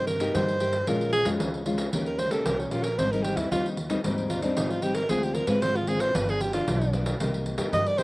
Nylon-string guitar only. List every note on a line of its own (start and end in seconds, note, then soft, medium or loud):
0.00 0.32 C3 medium
0.20 0.56 A#3 medium
0.20 0.56 D#4 medium
0.20 0.57 G4 medium
0.35 0.85 G2 medium
0.60 0.76 A#3 medium
0.60 0.76 D#4 soft
0.60 0.76 G4 medium
0.87 1.37 A#2 medium
0.87 1.23 G#3 medium
0.87 1.23 C#4 medium
0.87 1.23 F4 medium
1.25 1.61 G#3 medium
1.25 1.62 C#4 medium
1.25 1.62 F4 medium
1.41 1.91 F2 medium
1.66 1.89 G#3 medium
1.66 1.89 C#4 medium
1.66 1.89 F4 medium
1.94 2.43 D#3 medium
1.94 2.28 A#3 medium
1.94 2.29 C#4 medium
1.94 2.29 G4 medium
2.31 2.67 A#3 medium
2.31 2.67 C#4 medium
2.31 2.68 G4 medium
2.46 2.96 A#2 medium
2.71 2.87 A#3 medium
2.71 2.87 C#4 medium
2.71 2.88 G4 medium
2.99 3.49 G#2 medium
2.99 3.06 G3 medium
2.99 3.07 C4 medium
2.99 3.07 D#4 medium
3.13 3.48 G3 medium
3.13 3.48 C4 medium
3.13 3.48 D#4 medium
3.51 4.01 D#3 medium
3.51 3.76 G3 medium
3.51 3.76 C4 medium
3.51 3.76 D#4 medium
3.90 3.99 G3 medium
3.90 3.99 C4 medium
3.90 3.99 D#4 medium
4.04 4.54 G#2 medium
4.04 4.39 G3 medium
4.04 4.39 C4 medium
4.04 4.40 D#4 medium
4.43 4.78 G3 medium
4.43 4.78 C4 medium
4.43 4.79 D#4 medium
4.57 5.07 D#3 medium
4.82 5.00 G3 medium
4.82 5.00 C4 medium
4.82 5.00 D#4 medium
5.10 5.60 D3 medium
5.10 5.45 G#3 medium
5.10 5.45 C4 medium
5.10 5.45 F4 medium
5.47 5.83 G#3 medium
5.47 5.84 C4 medium
5.47 5.84 F4 medium
5.62 6.12 D3 medium
5.87 6.10 G#3 medium
5.87 6.10 C4 medium
5.87 6.10 F4 medium
6.14 6.65 G2 medium
6.14 6.39 F3 medium
6.14 6.39 B3 medium
6.14 6.40 D4 medium
6.53 6.89 F3 medium
6.53 6.89 B3 medium
6.53 6.89 D4 medium
6.68 7.18 D3 medium
6.93 7.16 F3 medium
6.93 7.16 B3 medium
6.93 7.16 D4 medium
7.20 7.70 C3 medium
7.20 7.56 A#3 medium
7.20 7.56 D#4 medium
7.20 7.56 G4 medium
7.58 7.94 A#3 medium
7.58 7.94 D#4 medium
7.58 7.94 G4 medium
7.73 8.03 G2 medium
7.98 8.03 A#3 medium
7.98 8.03 D#4 medium
7.98 8.03 G4 medium